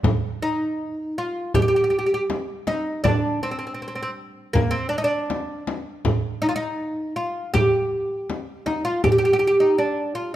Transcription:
0.03 darbuka dum medium
0.03 frame drum medium
0.42 1.18 D#4 medium
0.98 darbuka ka soft
1.18 1.54 F4 medium
1.54 1.61 G4 medium
1.54 darbuka dum medium
1.54 frame drum medium
1.62 1.67 G4 medium
1.68 1.75 G4 medium
1.74 1.83 G4 soft
1.74 darbuka ka soft
1.84 1.89 G4 medium
1.90 1.97 G4 soft
1.99 2.05 G4 medium
2.06 2.13 G4 soft
2.14 2.21 G4 medium
2.30 darbuka tek medium
2.30 frame drum medium
2.67 3.03 D#4 medium
2.67 frame drum medium
3.04 3.39 D4 medium
3.04 darbuka dum medium
3.04 frame drum medium
3.43 3.50 C4 medium
3.51 3.58 C4 medium
3.59 3.65 C4 medium
3.67 3.73 C4 soft
3.74 3.80 C4 soft
3.82 3.87 C4 soft
3.88 3.94 C4 medium
3.95 4.01 C4 soft
3.95 darbuka ka soft
4.03 4.09 C4 medium
4.53 4.73 A#3 medium
4.53 darbuka dum medium
4.53 frame drum medium
4.71 4.89 C4 medium
4.71 darbuka ka soft
4.89 4.97 D4 medium
4.98 5.04 D#4 medium
5.04 5.62 D4 medium
5.30 darbuka tek medium
5.30 frame drum medium
5.67 darbuka tek medium
5.67 frame drum medium
6.05 frame drum medium
6.05 darbuka dum medium
6.42 6.48 D#4 medium
6.42 darbuka ka soft
6.49 6.55 F4 medium
6.56 7.16 D#4 medium
7.00 darbuka ka soft
7.16 7.53 F4 medium
7.54 8.66 G4 loud
7.54 frame drum medium
7.54 darbuka dum medium
8.30 darbuka tek medium
8.30 frame drum medium
8.66 8.84 D#4 medium
8.66 darbuka tek medium
8.66 frame drum medium
8.85 9.03 F4 medium
9.04 9.11 G4 medium
9.04 frame drum medium
9.04 darbuka dum medium
9.12 9.17 G4 medium
9.18 9.24 G4 medium
9.25 9.32 G4 medium
9.33 9.38 G4 medium
9.39 9.46 G4 medium
9.43 9.56 G4 medium
9.43 darbuka ka soft
9.60 9.78 D#4 medium
9.78 10.13 D4 medium
9.78 darbuka ka soft
10.15 10.34 F4 medium

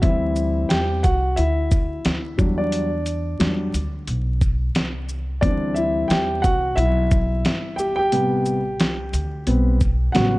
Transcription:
0.02 0.67 D2 loud
0.02 1.00 E3 medium
0.02 1.00 G3 medium
0.02 1.00 C4 medium
0.02 0.67 E4 medium
0.02 0.66 E5 medium
0.02 kick loud
0.02 closed hi-hat medium
0.36 shaker soft
0.69 1.02 E2 medium
0.69 1.02 G4 medium
0.69 1.05 G5 medium
0.69 snare loud
0.69 closed hi-hat medium
1.03 1.36 C2 medium
1.03 1.36 F#4 medium
1.03 1.38 F#5 medium
1.03 kick medium
1.03 closed hi-hat medium
1.03 shaker medium
1.36 2.02 D2 medium
1.36 2.54 E4 medium
1.36 2.54 E5 medium
1.36 closed hi-hat medium
1.71 kick loud
1.71 shaker medium
2.05 2.37 D2 medium
2.05 snare loud
2.05 closed hi-hat medium
2.38 3.36 E2 medium
2.38 2.85 F#3 medium
2.38 2.86 G3 soft
2.38 2.57 D4 medium
2.38 kick loud
2.38 shaker soft
2.58 3.39 D4 medium
2.58 3.89 D5 medium
2.72 closed hi-hat loud
3.06 closed hi-hat soft
3.06 shaker soft
3.39 3.72 E2 medium
3.39 3.70 F#3 soft
3.39 3.70 G3 soft
3.39 3.71 D4 soft
3.39 snare loud
3.39 closed hi-hat medium
3.74 4.06 D2 medium
3.74 closed hi-hat medium
3.74 shaker medium
4.07 4.72 B1 medium
4.07 closed hi-hat medium
4.41 kick medium
4.41 shaker medium
4.75 5.39 C2 medium
4.75 snare loud
4.75 closed hi-hat medium
5.09 shaker soft
5.41 6.07 D2 loud
5.41 8.08 E3 soft
5.41 8.08 G3 soft
5.41 8.08 C4 medium
5.41 5.74 D4 medium
5.41 5.77 D5 medium
5.41 kick loud
5.41 closed hi-hat medium
5.74 6.08 E4 medium
5.74 6.10 E5 medium
5.74 shaker soft
6.08 6.42 E2 medium
6.08 6.42 G4 medium
6.08 6.44 G5 medium
6.08 snare loud
6.08 closed hi-hat medium
6.42 6.76 C2 medium
6.42 6.75 F#4 medium
6.42 6.78 F#5 loud
6.42 kick medium
6.42 closed hi-hat soft
6.42 shaker medium
6.76 7.41 B1 loud
6.76 7.75 E4 medium
6.76 7.81 E5 loud
6.76 closed hi-hat medium
7.11 kick medium
7.11 shaker medium
7.45 8.12 G1 medium
7.45 snare loud
7.45 closed hi-hat medium
7.76 7.97 G4 medium
7.76 7.94 G5 medium
7.76 shaker soft
7.96 10.11 G4 medium
7.96 10.20 G5 loud
8.12 8.80 A1 loud
8.12 8.59 C3 soft
8.12 8.59 G3 soft
8.12 8.60 B3 medium
8.12 closed hi-hat medium
8.46 shaker soft
8.80 9.12 C2 medium
8.80 snare loud
8.80 closed hi-hat medium
9.13 9.45 D2 loud
9.13 closed hi-hat soft
9.13 shaker medium
9.47 10.11 B1 loud
9.47 9.78 G3 soft
9.47 9.78 B3 medium
9.47 9.77 C4 soft
9.47 closed hi-hat medium
9.81 kick medium
9.81 shaker medium
10.12 10.39 A1 loud
10.12 10.39 C#3 medium
10.12 10.39 F#3 medium
10.12 10.39 G3 soft
10.12 10.39 B3 medium
10.12 10.39 F#4 medium
10.12 10.39 F#5 medium
10.12 snare loud
10.12 closed hi-hat medium

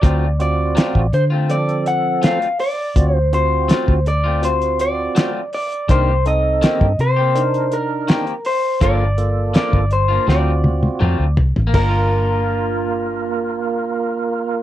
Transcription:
0.00 0.78 D2 loud
0.00 0.25 F#3 medium
0.00 0.25 A3 medium
0.00 0.26 C4 medium
0.00 0.26 F4 medium
0.00 0.26 F#4 medium
0.00 0.36 D5 loud
0.00 kick loud
0.00 closed hi-hat medium
0.39 1.07 C4 medium
0.39 1.07 F4 medium
0.39 1.07 F#4 medium
0.39 1.10 D5 medium
0.39 closed hi-hat medium
0.75 0.98 F#3 medium
0.75 0.99 A3 medium
0.75 0.99 C4 medium
0.75 0.99 F4 loud
0.75 snare loud
0.75 closed hi-hat medium
0.95 1.10 A1 medium
0.95 kick medium
1.13 2.32 D3 medium
1.13 1.24 C5 medium
1.13 closed hi-hat medium
1.30 1.54 A3 soft
1.30 1.53 C4 soft
1.30 1.53 F4 soft
1.49 2.40 F3 medium
1.49 2.40 C4 medium
1.49 2.40 A4 medium
1.49 1.87 D5 medium
1.49 closed hi-hat medium
1.69 closed hi-hat soft
1.86 2.21 F#5 loud
1.86 closed hi-hat medium
2.22 2.45 F#3 medium
2.22 2.45 A3 medium
2.22 2.46 C4 medium
2.22 2.46 F4 medium
2.22 2.60 F5 medium
2.22 snare loud
2.22 closed hi-hat medium
2.42 closed hi-hat soft
2.59 3.16 D5 loud
2.59 open hi-hat medium
2.96 3.71 D2 loud
2.96 3.19 C4 medium
2.96 3.19 F4 medium
2.96 3.19 F#4 medium
2.96 kick loud
2.96 closed hi-hat medium
3.16 3.34 C5 loud
3.33 4.00 C4 medium
3.33 4.00 F4 medium
3.33 4.00 F#4 medium
3.33 4.08 C5 medium
3.33 closed hi-hat medium
3.68 3.91 F#3 medium
3.68 3.92 A3 medium
3.68 3.92 C4 medium
3.68 3.92 F4 medium
3.68 snare loud
3.68 closed hi-hat medium
3.88 5.07 D2 medium
3.88 kick medium
4.06 4.41 D5 loud
4.06 closed hi-hat medium
4.24 4.47 A3 soft
4.24 4.47 C4 medium
4.24 4.46 F4 medium
4.42 5.32 C4 medium
4.42 5.33 F4 medium
4.42 5.33 F#4 medium
4.42 4.81 C5 medium
4.42 closed hi-hat medium
4.62 closed hi-hat soft
4.79 5.49 D5 loud
4.79 closed hi-hat medium
5.15 5.38 F#3 medium
5.15 5.38 A3 medium
5.15 5.39 C4 medium
5.15 5.39 F4 medium
5.15 snare loud
5.15 closed hi-hat medium
5.53 5.90 D5 medium
5.53 open hi-hat medium
5.72 closed hi-hat soft
5.88 6.64 C2 loud
5.88 6.11 D#3 medium
5.88 6.11 A#3 medium
5.88 6.12 C4 medium
5.88 6.12 D4 medium
5.88 6.12 D#4 medium
5.88 6.12 G4 medium
5.88 6.12 A#4 medium
5.88 6.27 C5 loud
5.88 kick loud
5.88 closed hi-hat medium
6.26 6.93 C4 medium
6.26 6.93 D#4 medium
6.26 6.93 A4 medium
6.26 7.00 D#5 medium
6.26 closed hi-hat medium
6.62 6.84 D#3 medium
6.62 6.85 A#3 medium
6.62 6.85 C4 medium
6.62 6.85 G4 loud
6.62 snare loud
6.62 closed hi-hat medium
6.81 6.95 G2 medium
6.81 kick medium
6.99 8.17 C3 medium
6.99 7.75 C5 loud
6.99 closed hi-hat medium
7.17 7.40 A#3 soft
7.17 7.39 C4 medium
7.17 7.39 G4 medium
7.35 8.25 D4 medium
7.35 8.25 D#4 medium
7.35 8.25 A#4 medium
7.35 closed hi-hat medium
7.54 closed hi-hat soft
7.72 8.48 A#4 medium
7.72 closed hi-hat medium
8.08 8.30 D#3 medium
8.08 8.31 A#3 medium
8.08 8.31 C4 medium
8.08 8.32 G4 medium
8.08 snare loud
8.08 closed hi-hat medium
8.27 closed hi-hat soft
8.45 8.82 C5 medium
8.45 open hi-hat medium
8.81 9.56 G1 loud
8.81 9.04 F3 medium
8.81 9.04 A#3 medium
8.81 9.04 D4 medium
8.81 9.04 F4 medium
8.81 9.05 F4 medium
8.81 9.04 A4 medium
8.81 9.56 D5 medium
8.81 kick loud
8.81 closed hi-hat medium
9.18 9.85 A#3 medium
9.18 9.86 F4 medium
9.18 9.85 A4 medium
9.18 closed hi-hat medium
9.54 9.77 F3 medium
9.54 9.77 A#3 medium
9.54 9.78 D4 medium
9.54 9.78 F4 medium
9.54 9.92 D5 medium
9.54 snare loud
9.54 closed hi-hat medium
9.73 10.17 G1 medium
9.73 kick medium
9.91 10.26 C5 medium
9.91 closed hi-hat medium
10.09 10.27 A#3 soft
10.09 10.28 D4 soft
10.09 10.27 F4 soft
10.27 10.87 D2 loud
10.27 10.50 F#3 medium
10.27 10.50 A3 medium
10.27 11.18 C4 medium
10.27 10.50 C4 medium
10.27 11.18 F4 medium
10.27 10.51 F4 medium
10.27 11.18 F#4 medium
10.27 11.34 D5 medium
10.27 snare medium
10.64 high tom medium
10.83 high tom medium
11.00 11.18 F2 medium
11.00 11.23 F#3 medium
11.00 11.23 A3 medium
11.00 11.24 C4 medium
11.00 11.24 F4 medium
11.00 mid tom medium
11.19 11.36 D2 medium
11.37 11.55 C2 medium
11.37 floor tom loud
11.56 11.73 A1 medium
11.56 floor tom medium
11.67 14.63 A#3 medium
11.74 14.63 G1 medium
11.74 14.63 A#3 medium
11.74 14.63 F4 medium
11.74 14.63 A#4 medium
11.74 kick loud
11.74 crash medium
11.79 14.63 D4 medium
11.89 14.63 F4 medium

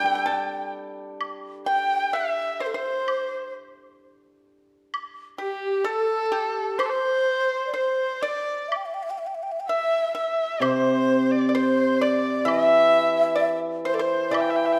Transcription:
0.00 2.13 G3 medium
0.00 1.44 D4 soft
0.00 1.67 G4 soft
0.00 1.91 A4 soft
0.00 0.69 G5 medium
0.00 0.74 G5 medium
0.06 0.13 G5 soft
0.15 0.21 G5 medium
0.26 2.14 D5 soft
0.26 0.70 A5 medium
0.26 low woodblock soft
1.21 high woodblock medium
1.66 2.10 G5 medium
1.66 2.16 G5 medium
1.66 2.17 G5 medium
2.13 2.57 E5 medium
2.13 2.64 E5 medium
2.13 2.61 E5 medium
2.60 2.73 C5 medium
2.60 2.74 C5 medium
2.60 2.68 C5 medium
2.67 2.78 A4 medium
2.74 3.49 C5 medium
2.74 3.54 C5 medium
3.08 high woodblock medium
4.94 high woodblock medium
5.38 5.82 G4 medium
5.38 5.86 G4 medium
5.38 5.88 G4 medium
5.84 6.28 A4 medium
5.84 6.80 A4 medium
5.84 6.26 A4 medium
6.26 6.35 A4 medium
6.32 6.75 G4 medium
6.32 6.81 G4 medium
6.78 6.87 C5 medium
6.78 7.48 C5 medium
6.78 7.66 C5 medium
6.78 high woodblock medium
6.85 6.91 A4 medium
6.90 7.73 C5 medium
7.48 7.60 B4 medium
7.60 7.72 A#4 medium
7.67 7.77 D5 soft
7.74 8.19 C5 medium
7.74 8.23 C5 medium
7.74 8.26 C5 medium
8.22 8.70 D5 medium
8.22 8.67 D5 medium
8.22 8.70 D5 medium
8.69 8.78 E5 medium
8.69 high woodblock medium
8.76 8.87 G5 medium
8.86 8.96 E5 medium
8.94 9.04 G5 medium
9.03 9.12 E5 medium
9.10 9.20 G5 medium
9.18 9.28 E5 medium
9.27 9.36 G5 medium
9.35 9.44 E5 medium
9.43 9.53 G5 medium
9.52 9.62 E5 medium
9.60 9.71 G5 medium
9.68 10.12 E5 medium
9.68 10.15 E5 medium
10.15 10.59 E5 medium
10.15 10.63 E5 medium
10.15 10.64 E5 medium
10.60 12.47 C3 medium
10.60 11.44 C5 medium
10.60 11.32 C5 medium
10.60 high woodblock medium
11.31 11.49 D5 medium
11.49 11.57 D5 medium
11.49 11.54 D5 soft
11.55 11.98 C5 medium
11.55 12.04 C5 medium
11.55 12.00 C5 medium
12.01 12.44 D5 medium
12.01 12.47 D5 medium
12.01 12.45 D5 medium
12.45 14.30 E3 medium
12.45 13.32 E5 medium
12.45 13.56 E5 medium
12.45 high woodblock medium
12.50 13.57 E5 medium
13.35 13.58 D5 medium
13.85 13.98 C5 medium
13.85 13.96 C5 medium
13.94 14.03 A4 medium
13.94 14.02 D5 medium
13.99 14.30 C5 medium
13.99 14.35 C5 medium
13.99 14.37 C5 medium
14.31 14.79 E3 medium
14.31 14.58 D5 medium
14.31 14.42 E5 medium
14.31 high woodblock medium
14.35 14.79 E5 medium
14.40 14.51 G5 medium
14.50 14.57 E5 medium
14.56 14.79 E5 medium
14.56 14.67 G5 medium
14.65 14.74 E5 medium
14.72 14.79 G5 medium

